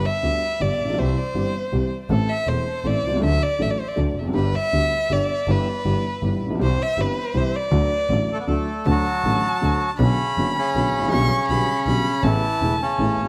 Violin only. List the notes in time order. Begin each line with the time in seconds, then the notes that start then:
0.05 E5
0.61 D5
0.98 C5
2.11 A4
2.29 E5
2.48 C5
2.87 D5
3.24 E5
3.42 D5
3.62 E5
3.70 D5
3.80 C5
3.88 D5
4.35 B4
4.55 E5
5.12 D5
5.50 B4
6.63 C5
6.82 E5
7.01 B4
7.37 C5
7.55 D5
8.86 A5
10.00 B5
11.12 C#6
11.48 B5
11.87 B5
12.23 A5